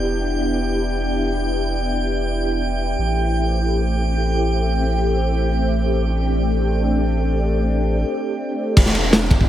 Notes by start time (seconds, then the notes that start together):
Already playing: E1 B3 D4 E4 G4 G5 G6
2.98 A1 A3 C4 G4
5.88 D4
8.77 E1 B3 D4 E4 G4 A5 A6, kick, crash, ride, downlifter
8.86 snare
8.95 ride
9.13 snare, ride
9.31 kick, ride
9.41 kick